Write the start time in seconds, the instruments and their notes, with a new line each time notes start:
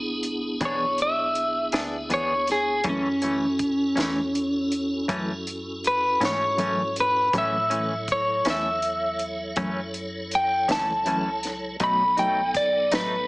Already playing: fm bass G#1, tonewheel organ B3 D4 E4 G#4
0.23 closed hi-hat
0.61 fm bass B1, clean electric guitar E3 B3 D4 G#4, kick, closed hi-hat
0.65 clean electric guitar C#5
0.98 closed hi-hat
1.02 clean electric guitar E5
1.35 closed hi-hat
1.72 fm bass D2, clean electric guitar B3 D4 G#4, snare, closed hi-hat
2.10 clean electric guitar E3 B3 D4 G#4 C#5, closed hi-hat
2.47 snare, closed hi-hat
2.52 clean electric guitar G#4
2.84 clean electric guitar F#2 E3 A3 C#4, fm bass F#2, tonewheel organ C#4 E4 F#4 A4, kick, closed hi-hat
2.89 clean electric guitar C#4
3.22 clean electric guitar E3 A3 C#4, closed hi-hat
3.59 kick, closed hi-hat
3.96 fm bass E2, clean electric guitar E3 A3 C#4, snare, closed hi-hat
4.35 closed hi-hat
4.72 closed hi-hat
5.08 clean electric guitar F#2 E3 A3 C#4, fm bass F#2, kick, closed hi-hat
5.47 closed hi-hat
5.84 clean electric guitar B4, closed hi-hat
6.20 fm bass G#2, clean electric guitar E3 A3 C#4, snare, closed hi-hat
6.25 clean electric guitar C#5
6.58 clean electric guitar F#2 E3 A3 C#4, closed hi-hat
6.96 closed hi-hat
7.00 clean electric guitar B4
7.33 clean electric guitar F#2 E3 A3 C#4, fm bass A2, tonewheel organ F#3 E4 A4 C#5, kick, closed hi-hat
7.38 clean electric guitar E5
7.70 clean electric guitar E3 A3 C#4, closed hi-hat
8.08 kick, closed hi-hat
8.12 clean electric guitar C#5
8.45 fm bass E2, clean electric guitar E3 A3 C#4, snare, closed hi-hat
8.50 clean electric guitar E5
8.82 closed hi-hat
9.19 closed hi-hat
9.56 clean electric guitar F#2 E3 A3 C#4, fm bass F#2, kick, closed hi-hat
9.94 closed hi-hat
10.31 clean electric guitar G5, closed hi-hat
10.68 fm bass C#2, clean electric guitar E3 A3 C#4 A5, snare, closed hi-hat
11.06 clean electric guitar F#2 E3 A3 C#4, closed hi-hat
11.43 snare, closed hi-hat
11.80 fm bass B1, clean electric guitar B2 F#3 A3 D#4 B5, tonewheel organ F#3 B3 D#4 A4, kick, closed hi-hat
12.17 clean electric guitar F#3 A3 D#4 G5, closed hi-hat
12.54 clean electric guitar D5, kick, closed hi-hat
12.92 fm bass A1, clean electric guitar F#3 A3 D#4 B4, snare, closed hi-hat